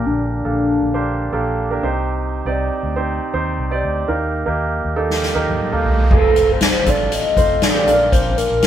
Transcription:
0.00 0.53 A#2 medium
0.00 0.34 A#3 medium
0.00 0.34 D4 medium
0.00 0.34 G4 medium
0.00 0.34 A#4 medium
0.06 0.41 A#1 medium
0.06 0.31 D4 medium
0.32 1.28 D4 medium
0.45 0.79 A#1 medium
0.45 0.86 A#3 medium
0.45 0.86 D4 medium
0.45 0.86 G4 soft
0.45 0.86 A4 medium
0.82 1.29 A#1 medium
0.94 1.26 A#3 medium
0.94 1.26 D4 medium
0.94 1.26 G4 medium
0.94 1.26 C5 medium
1.32 1.79 A#1 medium
1.32 1.64 A#3 medium
1.32 1.64 D4 medium
1.32 1.64 G4 medium
1.32 1.64 A4 medium
1.71 1.83 A#3 medium
1.71 1.83 D4 medium
1.71 1.82 G4 medium
1.71 1.83 A#4 medium
1.83 2.42 C2 medium
1.83 2.54 C3 medium
1.83 2.35 C4 medium
1.83 2.35 D#4 medium
1.83 2.35 G4 medium
1.83 2.35 C5 medium
2.45 2.69 C2 medium
2.45 2.88 C4 medium
2.45 2.88 D#4 medium
2.45 2.88 G4 medium
2.45 2.88 D5 medium
2.83 3.18 D2 medium
2.96 3.28 C4 medium
2.96 3.28 D#4 medium
2.96 3.28 G4 medium
2.96 3.28 C5 medium
3.34 3.57 D#2 medium
3.34 3.65 C4 medium
3.34 3.65 D#4 medium
3.34 3.65 G4 medium
3.34 3.65 C5 medium
3.59 3.82 C2 medium
3.71 4.03 C4 medium
3.71 4.03 D#4 medium
3.71 4.03 G4 medium
3.71 4.03 D5 medium
3.84 4.07 D2 medium
4.08 4.44 D#2 medium
4.08 4.80 D#3 medium
4.08 4.40 A#3 medium
4.08 4.40 D#4 medium
4.08 4.40 G4 medium
4.08 4.40 A#4 medium
4.08 riser medium
4.46 4.82 D#2 medium
4.46 4.89 A#3 medium
4.46 4.89 D#4 medium
4.46 4.89 G4 medium
4.46 4.89 A#4 medium
4.85 5.32 D#2 medium
4.96 5.28 A#3 medium
4.96 5.28 D#4 medium
4.96 5.28 G4 medium
4.96 5.28 A4 medium
5.10 snare soft
5.23 snare soft
5.35 5.59 D#2 medium
5.35 5.67 A#3 medium
5.35 5.67 D#4 medium
5.35 5.67 G4 medium
5.35 5.67 A#4 medium
5.48 high tom medium
5.72 6.04 A#3 medium
5.72 6.04 D#4 medium
5.72 6.04 G4 medium
5.72 6.04 A4 medium
5.72 mid tom medium
5.86 floor tom medium
5.99 floor tom medium
6.11 6.46 F1 medium
6.11 6.74 A3 medium
6.11 6.74 C4 medium
6.11 6.74 F4 medium
6.11 6.17 G#4 medium
6.11 6.54 A4 medium
6.11 kick loud
6.11 crash medium
6.11 impact medium
6.17 6.77 A4 medium
6.36 closed hi-hat medium
6.49 6.72 G1 medium
6.49 6.91 C5 loud
6.61 snare loud
6.61 closed hi-hat medium
6.86 7.22 A1 medium
6.86 7.29 A3 medium
6.86 7.29 C4 medium
6.86 7.28 F4 medium
6.86 7.29 A4 medium
6.86 7.15 D5 medium
6.86 kick medium
6.86 closed hi-hat medium
7.12 7.64 D#5 loud
7.12 closed hi-hat medium
7.37 7.60 F1 medium
7.37 7.68 A3 medium
7.37 7.68 C4 medium
7.37 7.68 F4 medium
7.37 7.69 C5 medium
7.37 kick medium
7.37 closed hi-hat medium
7.62 7.86 A1 medium
7.62 8.12 D5 loud
7.62 snare loud
7.62 closed hi-hat medium
7.74 7.87 A3 medium
7.74 7.87 C4 medium
7.74 7.86 F4 medium
7.74 7.87 G4 medium
7.87 8.11 A#1 medium
7.87 8.59 A#2 medium
7.87 8.67 A#3 medium
7.87 8.67 D4 medium
7.87 8.67 F4 medium
7.87 7.93 A4 medium
7.87 closed hi-hat medium
7.93 8.67 A#4 medium
8.12 8.48 A#1 loud
8.12 8.39 C5 medium
8.12 kick loud
8.12 closed hi-hat medium
8.38 8.67 A#4 medium
8.38 closed hi-hat medium
8.50 8.67 A#1 medium
8.62 snare loud
8.62 closed hi-hat loud

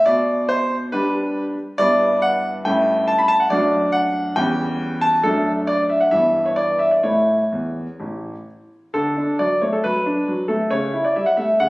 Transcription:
0.06 0.90 B2 medium
0.06 0.45 D5 medium
0.49 0.75 C5 medium
0.92 1.54 G3 soft
0.92 1.55 D4 soft
0.92 1.55 G4 soft
0.92 1.44 B4 medium
1.78 2.62 G2 medium
1.78 2.61 G3 soft
1.78 2.61 B3 soft
1.78 2.61 E4 soft
1.78 2.21 D5 loud
2.22 2.48 F#5 medium
2.65 3.48 G2 medium
2.65 3.47 A3 soft
2.65 3.47 C#4 soft
2.65 3.47 E4 soft
2.65 3.07 G5 medium
3.08 3.18 A5 medium
3.19 3.29 B5 medium
3.28 3.39 A5 medium
3.40 3.50 F#5 medium
3.50 4.34 F#2 medium
3.50 4.32 A3 soft
3.50 4.33 D4 soft
3.50 4.33 F#4 soft
3.50 3.93 D5 medium
3.92 4.36 F#5 medium
4.36 5.21 E2 medium
4.36 5.20 G3 soft
4.36 5.20 C#4 soft
4.36 5.20 G4 soft
4.36 5.01 G5 medium
5.01 5.23 A5 medium
5.23 6.09 F#2 soft
5.23 6.08 F#3 soft
5.23 6.08 A3 soft
5.23 6.09 D4 soft
5.23 5.50 A4 medium
5.67 5.81 D5 medium
5.90 6.01 E5 soft
6.00 6.12 F#5 soft
6.11 7.01 G2 soft
6.11 7.00 E3 soft
6.11 7.00 B3 soft
6.11 7.01 E4 soft
6.11 6.45 E5 medium
6.46 6.57 C#5 soft
6.56 6.80 D5 medium
6.79 6.91 E5 medium
6.91 7.04 D5 soft
7.03 7.37 A2 soft
7.03 7.42 A3 soft
7.03 7.42 E4 soft
7.03 8.46 C#5 medium
7.52 7.85 E2 soft
8.00 8.32 A1 soft
8.94 9.16 D3 soft
8.94 9.35 A4 medium
9.16 9.40 D4 soft
9.39 9.63 F#3 soft
9.39 9.59 D5 medium
9.61 9.85 A3 soft
9.61 9.73 C#5 soft
9.73 9.84 A4 soft
9.84 10.07 F#3 soft
9.84 10.49 B4 medium
10.06 10.29 D4 soft
10.28 10.51 F#3 soft
10.48 10.71 A3 soft
10.48 10.69 A4 medium
10.71 10.93 C#3 soft
10.71 11.04 C#5 medium
10.94 11.17 E4 soft
11.05 11.16 D5 soft
11.16 11.40 G3 soft
11.16 11.27 E5 soft
11.26 11.38 F#5 soft
11.37 11.61 A3 soft
11.37 11.58 E5 medium
11.60 11.69 C#3 soft
11.60 11.69 F#5 medium

